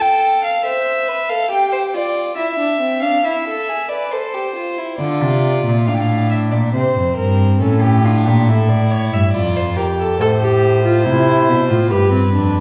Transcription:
Already playing: violin A4
0.01 violin G5
0.44 violin F5
0.64 violin C5 E5
1.08 violin B4
1.29 violin A4 F5
1.50 violin G4 G5
1.73 violin C5
1.94 violin F4 D5
2.36 violin E4 E5
2.59 violin D4
2.80 violin C4
3.02 violin D4 F5
3.24 violin E4 E5
3.48 violin A4
3.69 violin G#4
3.89 violin B4 D5
4.11 violin A4 C5
4.34 violin G4
4.56 violin F4
4.78 violin E4
4.99 cello D3, violin F4 D5
5.21 cello C3
5.65 cello A#2
5.86 cello A2, violin D4 F5
5.94 violin G5
6.00 violin F5
6.31 violin E5
6.51 cello A#2, violin D5
6.73 cello C3, violin C4 C5
6.95 cello F2
7.17 cello G2, violin A#4
7.61 cello A2, violin C#4 A4
7.82 violin G4
8.04 violin D4 F4
8.25 cello A#2, violin G4
8.47 cello A2, violin E4 A4
8.69 violin D5
8.91 violin C#5
9.13 cello G2, violin E5
9.33 cello F2, violin F4 D5
9.56 violin C5
9.77 violin G4 A#4
9.99 violin A4
10.20 cello A2, viola A4, violin C5
10.41 viola G4
10.85 viola F4
11.06 cello C3, viola E4
11.49 cello B2
11.70 cello A2, viola F4
11.91 cello G2, viola G4, violin B4
12.13 viola C4
12.34 cello F2, viola D4

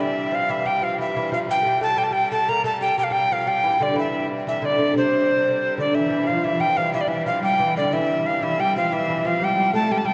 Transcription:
Already playing: pipe organ C3 G3
0.00 lute E3, recorder E5
0.32 lute F3, recorder F5
0.49 lute E3, recorder E5
0.65 lute G3, recorder G5
0.82 lute F3, recorder F5
0.98 lute E3, recorder E5
1.16 lute E3
1.32 lute F3, recorder F5
1.49 lute G3, recorder G5
1.62 lute A3
1.66 lute G3
1.81 lute A3, recorder A5
1.97 pipe organ C3 G3, lute G3, recorder G5
2.04 recorder A5
2.11 lute G3, recorder G5
2.32 lute A3, recorder A5
2.48 lute A#3, recorder A#5
2.64 lute A3, recorder A5
2.81 lute G3, recorder G5
2.98 lute G3, recorder G5
3.04 recorder F5
3.11 lute G3, recorder G5
3.31 lute F3, recorder F5
3.47 lute G3, recorder G5
3.63 lute E3
3.80 lute D3, recorder D5
3.96 lute E3, recorder E5
4.47 lute E3, recorder E5
4.62 lute D3, recorder D5
4.78 lute D3
4.94 lute C3, recorder C5
5.77 viola da gamba D3, lute D3, recorder D5
5.95 pipe organ C3 G3, lute E3, viola da gamba E3, recorder E5
6.10 lute E3
6.23 lute G3, recorder F5
6.28 viola da gamba F3, lute F3
6.44 viola da gamba E3, lute E3, recorder E5
6.50 viola da gamba F3
6.57 viola da gamba E3, lute G3, recorder G5
6.77 lute F3, recorder F5
6.93 viola da gamba E3, lute E3, recorder E5
7.01 recorder D5
7.06 viola da gamba E3, lute E3, recorder E5
7.26 lute F3, recorder F5
7.42 viola da gamba G3, lute G3, recorder G5
7.59 lute E3, viola da gamba E3
7.77 lute D3, viola da gamba D3, recorder D5
7.93 lute E3, viola da gamba E3, recorder E5
8.26 recorder F5
8.43 lute E3, viola da gamba E3, recorder E5
8.59 lute G3, viola da gamba G3, recorder G5
8.76 lute F3, viola da gamba F3, recorder F5
8.92 lute E3, viola da gamba E3, recorder E5
9.10 lute E3
9.25 lute F3, viola da gamba F3, recorder F5
9.41 lute G3, viola da gamba G3, recorder G5
9.58 viola da gamba G3
9.73 lute A3, viola da gamba A3, recorder A5
9.91 pipe organ C3 G3, viola da gamba G3, lute G3, recorder G5
9.98 recorder A5
10.04 viola da gamba G3, lute G3, recorder G5

